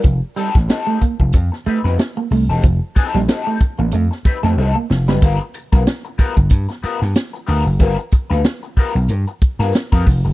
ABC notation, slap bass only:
X:1
M:4/4
L:1/16
Q:"Swing 16ths" 1/4=93
K:Gmix
V:1 name="Slap bass" clef=bass
F,,, z2 A,,, z3 F,,, F,, z2 F,, z2 C,, E,,, | F,,, z2 _B,,, z3 A,,, F,, z2 F,, C,, z F,,, ^F,,, | G,,, z2 B,,, z3 G,,, G,, z2 G,, z2 D,, ^F,,, | G,,, z2 D,, z3 B,,, G,, z2 G,, z F,, F,,, ^F,,, |]